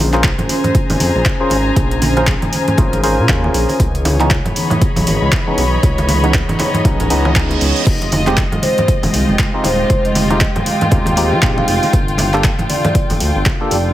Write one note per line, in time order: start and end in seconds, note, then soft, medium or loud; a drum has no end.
0.00 0.32 A#1 loud
0.00 0.73 A#3 medium
0.00 3.76 C#4 medium
0.00 3.76 F4 medium
0.00 3.76 G#4 medium
0.00 0.10 C5 medium
0.00 3.76 C5 medium
0.00 3.80 C5 medium
0.13 0.30 C#4 medium
0.13 0.30 F4 medium
0.13 0.30 G#4 medium
0.13 0.30 A#4 medium
0.13 0.30 C5 loud
0.13 clap soft
0.13 closed hi-hat soft
0.18 4.87 G#5 medium
0.23 3.80 A#5 medium
0.23 kick loud
0.23 clap loud
0.23 closed hi-hat medium
0.23 muted conga medium
0.38 closed hi-hat soft
0.38 low conga medium
0.49 open hi-hat loud
0.49 muted conga soft
0.49 high conga medium
0.64 closed hi-hat soft
0.64 low conga medium
0.75 kick loud
0.75 closed hi-hat medium
0.90 0.97 G#1 medium
0.90 open hi-hat medium
0.90 muted conga medium
0.90 low conga medium
0.99 1.11 F2 medium
0.99 open hi-hat loud
0.99 high conga medium
1.15 1.23 A#1 medium
1.15 muted conga soft
1.25 kick loud
1.25 clap loud
1.25 closed hi-hat medium
1.40 1.57 C#4 medium
1.40 1.57 F4 medium
1.40 1.57 G#4 medium
1.40 1.57 A#4 medium
1.40 1.57 C5 medium
1.50 1.71 G#1 medium
1.50 open hi-hat loud
1.50 muted conga medium
1.76 2.36 A#1 loud
1.76 kick loud
1.76 closed hi-hat medium
1.76 muted conga soft
1.91 closed hi-hat soft
2.02 open hi-hat loud
2.02 high conga loud
2.17 2.33 C#4 medium
2.17 2.33 F4 medium
2.17 2.33 G#4 medium
2.17 2.33 A#4 medium
2.17 2.33 C5 medium
2.17 closed hi-hat soft
2.17 muted conga medium
2.27 kick loud
2.27 clap loud
2.27 closed hi-hat medium
2.42 closed hi-hat soft
2.42 muted conga medium
2.42 low conga medium
2.53 open hi-hat loud
2.53 high conga medium
2.68 closed hi-hat soft
2.68 low conga medium
2.78 3.20 G#1 loud
2.78 3.01 C#4 medium
2.78 3.01 F4 medium
2.78 3.01 G#4 medium
2.78 3.01 A#4 medium
2.78 3.01 C5 medium
2.78 kick loud
2.78 closed hi-hat medium
2.78 muted conga medium
2.93 closed hi-hat medium
2.93 low conga medium
3.03 3.26 C#4 medium
3.03 3.26 F4 medium
3.03 3.26 G#4 medium
3.03 3.27 A#4 medium
3.03 3.27 C5 loud
3.03 open hi-hat loud
3.03 muted conga medium
3.19 3.26 A#2 medium
3.29 3.49 D#2 loud
3.29 3.78 C#4 medium
3.29 3.79 G#4 medium
3.29 3.79 A#4 medium
3.29 kick loud
3.29 clap loud
3.29 closed hi-hat medium
3.44 muted conga medium
3.54 3.65 A#1 medium
3.54 open hi-hat medium
3.69 open hi-hat medium
3.69 muted conga medium
3.80 4.39 C#2 medium
3.80 7.83 E3 medium
3.80 7.87 E3 medium
3.80 7.83 B3 medium
3.80 9.86 D#4 medium
3.80 7.83 G#4 medium
3.80 kick loud
3.80 closed hi-hat medium
3.95 7.87 C#5 medium
3.95 closed hi-hat soft
4.05 open hi-hat loud
4.05 muted conga medium
4.05 high conga medium
4.20 4.36 E3 medium
4.20 4.36 G#3 medium
4.20 4.36 B3 medium
4.20 4.37 C#4 medium
4.20 4.37 D#4 loud
4.20 clap soft
4.20 closed hi-hat soft
4.30 kick loud
4.30 clap loud
4.30 closed hi-hat medium
4.30 muted conga medium
4.36 7.87 B5 medium
4.45 closed hi-hat soft
4.45 low conga medium
4.51 11.93 D#5 medium
4.56 open hi-hat loud
4.56 high conga medium
4.70 closed hi-hat medium
4.70 muted conga medium
4.70 low conga medium
4.81 kick loud
4.81 closed hi-hat medium
4.96 5.04 B1 medium
4.96 open hi-hat medium
4.96 muted conga soft
4.96 low conga medium
5.07 5.18 G#1 medium
5.07 open hi-hat loud
5.07 high conga medium
5.22 5.29 C#2 medium
5.32 kick loud
5.32 clap loud
5.32 closed hi-hat medium
5.32 muted conga medium
5.47 5.63 E3 medium
5.47 5.63 G#3 medium
5.47 5.64 B3 medium
5.47 5.64 C#4 medium
5.47 5.64 D#4 medium
5.58 5.77 B1 medium
5.58 open hi-hat loud
5.58 muted conga soft
5.83 6.42 C#2 loud
5.83 kick loud
5.83 closed hi-hat medium
5.98 closed hi-hat soft
5.98 muted conga medium
6.08 open hi-hat medium
6.08 high conga loud
6.23 6.40 E3 medium
6.23 6.40 G#3 medium
6.23 6.40 B3 medium
6.23 6.40 C#4 medium
6.23 6.40 D#4 medium
6.23 closed hi-hat soft
6.23 muted conga soft
6.34 kick loud
6.34 clap loud
6.34 closed hi-hat medium
6.49 closed hi-hat soft
6.49 low conga medium
6.59 clap soft
6.59 open hi-hat loud
6.59 muted conga medium
6.59 high conga medium
6.74 closed hi-hat medium
6.74 low conga medium
6.85 7.10 B1 medium
6.85 7.08 E3 medium
6.85 7.08 G#3 medium
6.85 7.08 B3 medium
6.85 7.08 C#4 medium
6.85 7.08 D#4 medium
6.85 kick loud
6.85 closed hi-hat medium
6.85 reverse cymbal medium
6.85 muted conga medium
7.00 closed hi-hat medium
7.00 low conga medium
7.10 7.57 C#2 loud
7.10 7.33 E3 medium
7.10 7.33 G#3 medium
7.10 7.33 B3 medium
7.10 7.33 C#4 medium
7.10 7.33 D#4 medium
7.10 open hi-hat loud
7.25 muted conga medium
7.35 7.85 E3 medium
7.35 7.85 G#3 medium
7.35 7.85 B3 medium
7.35 7.85 C#4 medium
7.35 7.85 D#4 medium
7.35 kick loud
7.35 clap loud
7.35 closed hi-hat medium
7.51 closed hi-hat soft
7.51 muted conga medium
7.61 7.72 C#2 loud
7.61 open hi-hat loud
7.76 open hi-hat medium
7.86 8.46 F1 loud
7.86 11.89 G#3 medium
7.86 11.89 C4 medium
7.86 13.93 F4 medium
7.86 11.89 G4 medium
7.86 kick loud
7.86 closed hi-hat medium
7.86 crash medium
8.02 closed hi-hat soft
8.02 muted conga medium
8.12 11.93 G#3 medium
8.12 open hi-hat loud
8.12 high conga loud
8.27 8.43 G#3 loud
8.27 8.43 C4 medium
8.27 8.43 D#4 medium
8.27 8.43 F4 medium
8.27 8.43 G4 loud
8.27 clap soft
8.27 closed hi-hat soft
8.37 kick loud
8.37 clap loud
8.37 closed hi-hat medium
8.37 muted conga medium
8.52 closed hi-hat soft
8.52 low conga medium
8.62 8.72 C5 medium
8.62 13.93 G5 medium
8.62 open hi-hat loud
8.62 muted conga medium
8.62 high conga medium
8.78 8.85 C5 medium
8.78 closed hi-hat medium
8.78 low conga medium
8.88 kick loud
8.88 closed hi-hat medium
9.03 9.11 D#1 medium
9.03 open hi-hat medium
9.03 muted conga medium
9.03 low conga medium
9.14 9.25 C2 medium
9.14 open hi-hat loud
9.14 high conga medium
9.29 9.36 F1 medium
9.29 muted conga soft
9.39 kick loud
9.39 clap loud
9.39 closed hi-hat medium
9.54 9.70 G#3 medium
9.54 9.70 C4 medium
9.54 9.70 D#4 medium
9.54 9.70 F4 medium
9.54 9.70 G4 medium
9.64 9.84 D#1 medium
9.64 10.02 C5 medium
9.64 open hi-hat loud
9.64 muted conga medium
9.90 10.49 F1 loud
9.90 11.91 F4 medium
9.90 kick loud
9.90 closed hi-hat medium
9.90 muted conga soft
10.05 10.14 D#5 medium
10.05 closed hi-hat soft
10.15 open hi-hat loud
10.15 high conga medium
10.30 10.46 G#3 medium
10.30 10.47 C4 medium
10.30 10.47 D#4 medium
10.30 10.47 F4 medium
10.30 10.47 G4 medium
10.30 10.40 D#5 medium
10.30 closed hi-hat soft
10.30 muted conga medium
10.41 kick loud
10.41 clap loud
10.41 closed hi-hat medium
10.56 closed hi-hat soft
10.56 muted conga soft
10.56 low conga loud
10.66 10.80 F5 medium
10.66 open hi-hat loud
10.66 high conga medium
10.81 closed hi-hat medium
10.81 low conga medium
10.91 11.34 D#1 loud
10.91 11.14 G#3 medium
10.91 11.15 C4 medium
10.91 11.15 D#4 medium
10.91 11.15 F4 medium
10.91 11.15 G4 medium
10.91 kick loud
10.91 closed hi-hat medium
10.91 muted conga medium
11.06 closed hi-hat medium
11.06 low conga medium
11.16 11.40 G#3 medium
11.16 11.40 C4 medium
11.16 11.40 D#4 medium
11.16 11.40 F4 medium
11.16 11.40 G4 loud
11.16 open hi-hat loud
11.16 muted conga soft
11.32 11.40 F2 medium
11.42 11.62 A#1 loud
11.42 11.92 G#3 medium
11.42 11.92 C4 medium
11.42 11.92 D#4 medium
11.42 11.92 F4 medium
11.42 11.92 G4 medium
11.42 kick loud
11.42 clap loud
11.42 closed hi-hat medium
11.57 11.64 F5 medium
11.57 muted conga medium
11.68 11.79 F1 medium
11.68 11.77 F5 medium
11.68 open hi-hat loud
11.83 open hi-hat medium
11.83 muted conga medium
11.93 12.53 G1 medium
11.93 13.93 A#3 medium
11.93 13.93 D4 medium
11.93 13.93 F4 medium
11.93 13.93 A4 medium
11.93 kick loud
11.93 closed hi-hat medium
12.08 closed hi-hat soft
12.18 open hi-hat loud
12.18 muted conga medium
12.18 high conga loud
12.34 12.50 A#3 loud
12.34 12.50 D4 medium
12.34 12.50 F4 medium
12.34 12.50 G4 medium
12.34 12.50 A4 loud
12.34 clap soft
12.34 closed hi-hat soft
12.44 kick loud
12.44 clap loud
12.44 closed hi-hat medium
12.44 muted conga medium
12.59 closed hi-hat soft
12.59 low conga medium
12.70 12.79 D5 medium
12.70 open hi-hat loud
12.70 high conga medium
12.85 12.91 D5 medium
12.85 closed hi-hat medium
12.85 muted conga medium
12.85 low conga loud
12.95 kick loud
12.95 closed hi-hat medium
13.10 13.18 F1 medium
13.10 open hi-hat medium
13.10 muted conga medium
13.10 low conga medium
13.20 13.31 D2 medium
13.20 open hi-hat loud
13.20 high conga medium
13.36 13.43 G1 medium
13.46 kick loud
13.46 clap loud
13.46 closed hi-hat medium
13.46 muted conga medium
13.61 13.77 A#3 medium
13.61 13.77 D4 medium
13.61 13.77 F4 medium
13.61 13.77 G4 medium
13.61 13.77 A4 medium
13.71 13.91 F1 medium
13.71 13.93 D5 medium
13.71 open hi-hat loud
13.71 muted conga medium